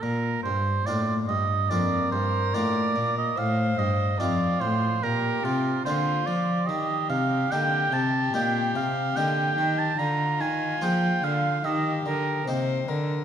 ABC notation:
X:1
M:4/4
L:1/16
Q:1/4=72
K:Bb
V:1 name="Oboe"
B2 c2 d2 e2 d2 c2 d3 e | f2 e2 d2 c2 B2 F2 c2 d2 | e2 f2 g2 a2 g2 f2 g3 a | b2 _a2 g2 f2 e2 B2 z4 |]
V:2 name="Violin"
z8 B8 | c4 F4 G4 F4 | G16 | F8 G4 c2 B2 |]
V:3 name="Harpsichord"
z4 [B,DF]4 [B,DF]4 [B,DF]4 | z4 [CEF]4 z4 [B,DF]4 | z4 [B,EG]4 [B,EG]4 [B,EG]4 | z4 [B,F_A]4 z4 [B,EG]4 |]
V:4 name="Harpsichord" clef=bass
B,,2 G,,2 A,,2 G,,2 F,,2 G,,2 A,,2 B,,2 | A,,2 G,,2 F,,2 A,,2 B,,2 C,2 D,2 F,2 | E,2 C,2 D,2 C,2 B,,2 C,2 D,2 E,2 | D,2 E,2 F,2 D,2 E,2 D,2 C,2 D,2 |]
V:5 name="Cello" clef=bass
B,,2 G,,2 A,,2 G,,2 F,,2 G,,2 A,,2 B,,2 | A,,2 G,,2 F,,2 A,,2 B,,2 C,2 D,2 F,2 | E,2 C,2 D,2 C,2 B,,2 C,2 D,2 E,2 | D,2 E,2 F,2 D,2 E,2 D,2 C,2 D,2 |]